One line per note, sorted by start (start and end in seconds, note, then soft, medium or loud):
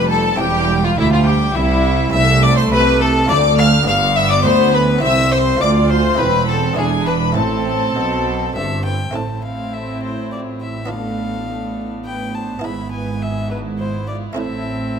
0.00 0.39 F1 medium
0.00 0.36 F2 medium
0.00 0.39 F2 medium
0.00 0.39 G3 medium
0.00 0.36 D4 medium
0.00 0.37 G4 medium
0.00 0.10 B4 loud
0.00 0.12 B4 loud
0.00 0.11 B5 loud
0.11 0.40 A4 medium
0.11 0.40 A5 loud
0.36 2.08 C4 medium
0.36 2.09 E4 medium
0.36 2.09 G4 medium
0.36 0.84 G5 loud
0.40 0.97 E1 loud
0.40 0.94 E2 medium
0.40 0.98 E2 loud
0.40 0.97 G3 medium
0.40 0.86 G4 medium
0.40 0.83 G4 loud
0.84 0.98 F4 medium
0.84 0.99 F5 loud
0.98 1.52 D2 medium
0.98 1.55 D2 medium
0.98 1.55 G3 medium
0.98 1.12 E4 loud
0.98 1.05 E4 loud
0.98 1.13 E5 loud
1.12 1.28 F4 medium
1.12 1.19 F4 medium
1.12 1.28 F5 loud
1.26 1.57 G4 loud
1.26 1.36 G4 medium
1.26 1.56 G5 loud
1.56 2.13 C2 loud
1.56 2.11 C2 medium
1.56 2.13 G3 medium
1.56 2.13 E4 loud
1.56 2.14 E5 loud
2.10 3.24 C4 medium
2.10 3.25 E4 medium
2.10 3.26 A4 medium
2.10 2.44 E5 loud
2.14 2.71 C2 loud
2.14 2.68 C2 medium
2.14 2.71 C2 loud
2.14 3.28 A3 medium
2.14 2.43 E5 loud
2.14 2.43 E6 loud
2.43 2.57 D5 loud
2.43 2.58 D5 loud
2.43 2.57 D6 loud
2.57 2.63 C5 medium
2.57 2.72 C5 loud
2.57 2.72 C6 loud
2.71 3.29 C2 medium
2.71 3.29 C3 medium
2.71 3.26 C3 medium
2.71 3.00 B4 loud
2.71 3.03 B4 loud
2.71 2.81 B5 loud
3.01 3.09 A4 medium
3.01 3.29 A4 loud
3.01 3.30 A5 loud
3.26 3.88 D2 medium
3.26 3.84 A3 medium
3.26 3.86 A3 medium
3.26 3.85 F4 medium
3.26 3.85 A4 medium
3.26 3.37 D5 loud
3.30 3.84 D2 medium
3.30 3.88 D2 medium
3.30 3.58 D5 loud
3.30 3.59 D6 loud
3.58 3.66 F5 loud
3.58 3.86 F5 loud
3.58 3.87 F6 loud
3.83 4.44 G2 loud
3.83 4.98 B3 medium
3.83 4.98 D4 medium
3.83 4.99 G4 medium
3.88 4.45 G1 loud
3.88 4.42 G2 medium
3.88 5.03 B3 medium
3.88 4.16 F5 loud
3.88 4.18 F5 loud
3.88 3.96 F6 loud
4.16 4.30 E5 loud
4.16 4.31 E5 loud
4.16 4.31 E6 loud
4.31 4.44 D5 loud
4.31 4.46 D5 loud
4.31 4.46 D6 loud
4.45 4.99 D2 medium
4.45 5.03 D2 medium
4.45 5.04 D2 medium
4.45 4.76 C5 loud
4.45 4.74 C5 loud
4.45 4.75 C6 loud
4.74 5.02 B4 loud
4.74 5.04 B4 loud
4.74 4.82 B5 loud
4.99 5.57 C4 medium
4.99 5.58 E4 medium
4.99 5.59 G4 medium
5.03 5.57 C2 medium
5.03 5.60 C2 medium
5.03 5.61 C4 medium
5.03 5.34 E5 loud
5.03 5.12 E5 loud
5.03 5.32 E6 loud
5.32 5.62 C5 loud
5.32 5.61 C5 medium
5.32 5.62 C6 loud
5.57 6.13 A3 medium
5.57 6.16 F4 medium
5.57 5.91 D5 medium
5.61 6.18 D2 medium
5.61 6.15 D2 medium
5.61 6.18 D2 loud
5.61 6.18 F4 medium
5.61 5.91 D5 loud
5.61 5.69 D6 loud
5.90 6.21 C5 loud
5.90 6.19 C5 loud
5.90 6.19 C6 loud
6.15 6.74 A3 medium
6.15 6.74 C4 medium
6.15 6.75 E4 medium
6.19 6.77 E1 medium
6.19 6.74 E2 medium
6.19 6.77 E2 medium
6.19 6.78 C4 medium
6.19 6.47 B4 medium
6.19 6.49 B4 loud
6.19 6.48 B5 loud
6.48 6.77 A4 medium
6.48 6.78 A4 medium
6.48 6.78 A5 loud
6.73 7.33 B3 medium
6.73 7.33 D4 medium
6.73 7.34 E4 medium
6.73 7.06 G#5 loud
6.77 7.36 E1 medium
6.77 7.33 E2 medium
6.77 7.36 E2 medium
6.77 7.37 D4 medium
6.77 6.86 G#4 medium
6.77 7.07 G#4 medium
7.07 7.15 B4 medium
7.07 7.37 B4 medium
7.07 7.37 B5 loud
7.32 7.96 A2 medium
7.32 9.09 A3 soft
7.32 9.10 C4 medium
7.32 9.10 E4 medium
7.32 8.53 A5 loud
7.37 7.96 A1 medium
7.37 7.92 A2 medium
7.37 8.91 C4 medium
7.37 8.85 A4 medium
7.37 8.53 A4 medium
7.96 8.55 B1 medium
7.96 8.54 B2 medium
7.96 8.52 B2 medium
8.55 9.14 G1 medium
8.55 9.13 G2 medium
8.55 9.11 G2 medium
8.55 8.84 A4 medium
8.55 8.83 E5 medium
8.85 8.93 B4 medium
8.85 9.16 G5 medium
9.11 12.60 A1 soft
9.11 12.60 A2 soft
9.11 10.84 A3 soft
9.11 10.85 C4 soft
9.11 10.85 E4 soft
9.11 10.86 E4 soft
9.11 9.44 C5 soft
9.11 9.44 A5 medium
9.15 12.60 A2 soft
9.15 10.86 C4 soft
9.43 9.73 A4 soft
9.43 9.75 F5 medium
9.74 10.02 A4 soft
9.74 10.02 E5 medium
10.03 10.11 E4 soft
10.03 10.31 C5 medium
10.32 10.60 F4 soft
10.32 10.40 D5 medium
10.61 10.90 G4 medium
10.61 10.91 E5 medium
10.86 12.58 B3 soft
10.86 14.33 B3 soft
10.86 12.58 D4 soft
10.86 12.59 F4 soft
10.90 12.60 D4 soft
10.90 11.89 A4 medium
10.90 11.91 F5 medium
12.05 12.33 B4 medium
12.05 12.36 G5 medium
12.34 12.64 C5 soft
12.34 12.66 A5 medium
12.59 14.31 B3 soft
12.59 14.32 E4 soft
12.64 14.38 G#1 medium
12.64 14.38 G#2 soft
12.64 14.34 G#2 soft
12.64 14.99 E4 soft
12.64 12.92 E5 medium
12.64 12.91 B5 medium
12.92 13.21 B4 medium
12.92 13.24 G#5 medium
13.21 13.50 G#4 medium
13.21 13.50 E5 medium
13.50 13.79 D4 soft
13.50 13.59 B4 medium
13.78 14.07 E4 soft
13.78 14.07 C5 medium
14.08 14.37 F4 medium
14.08 14.16 D5 medium
14.33 14.99 A3 soft
14.33 14.99 C4 soft
14.33 14.99 E4 soft
14.37 14.99 A1 medium
14.37 14.99 A2 medium
14.37 14.99 A2 soft
14.37 14.99 C4 medium
14.37 14.99 A4 medium
14.37 14.99 E5 medium